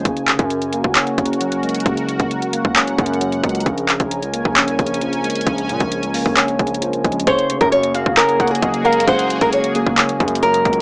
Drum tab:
HH |x-----x-----x-----x-----x-----x-----x-----------x-----x-----x---x---x---x-----x-----x--x--x--x--|x-----x-----x-----x-----x-----x-----x-----------x-----x-----x---x---x---x-----x-----x--x--x--x--|x-----x-----x-----x-----x-----x-----x-----------x-----x-----x---x---x---x-----x-----x--x--x--x--|x-----x-----x-----x-----x-----x-----o-----------x-----x-----x---x---x---x-----x-----x---x---x---|
CP |------------x-----------------------------------x-----------------------------------------------|------------------------------------------------x-----------------------------------------------|------------x-----------------------------------x-----------------------------------------------|------------------------------------------------x-----------------------------------------------|
BD |o-----------------o-----------------------o-----------------o-----------------------------------|o-----------------o-----------------------o-----------------o-----------------------o-----------|o-----------------o-----------------------o-----------------o-----------------------------------|o-----------------o-----------------------o-----------------o-----------------------o-----------|

HH |x-----x-----x-----x-----x-----x-----x-----------x-----x-----x---x---x---x-----x-----x---x---x---|x-----x-----x-----x-----x-----x-----x-----------x-----x-----x---x---x---x-----x-----x---x-------|
CP |------------------------------------------------x-----------------------------------------------|------------------------------------------------x-----------------------------------------------|
BD |o-----------------o-----------------------o-----------------o-----------o-----------------------|o-----------------o-----------------------o-----------------o-----------------------o-----------|